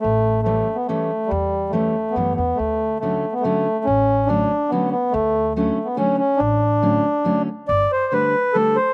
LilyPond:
<<
  \new Staff \with { instrumentName = "Accordion" } { \time 3/4 \key d \major \tempo 4 = 141 a4 a8. b16 a4 | g4 a4 b8 b8 | a4 a8. b16 a4 | cis'4 d'4 b8 b8 |
a4 a8. b16 cis'8 cis'8 | d'2~ d'8 r8 | \key g \major d''8 c''8 b'4 a'8 c''8 | }
  \new Staff \with { instrumentName = "Steel-string acoustic guitar" } { \clef bass \time 3/4 \key d \major r4 <e g a cis'>8 r8 <e g a cis'>8 r8 | r4 <e g a cis'>8 r8 <e g a cis'>8 r8 | r4 <d fis a cis'>8 r8 <d fis a cis'>8 r8 | r4 <d fis a cis'>8 r8 <d fis a cis'>8 r8 |
r4 <d fis a cis'>8 r8 <d fis a cis'>8 r8 | r4 <d fis a cis'>8 r8 <d fis a cis'>8 r8 | \key g \major r4 <d g a d'>8 r8 <d g a d'>8 r8 | }
  \new Staff \with { instrumentName = "Upright bass" } { \clef bass \time 3/4 \key d \major a,,2 r4 | e,2 fis,8 e,8 | d,2 r4 | a,,2 r4 |
d,2 r4 | a,,2 r4 | \key g \major g,,8 r2 r8 | }
>>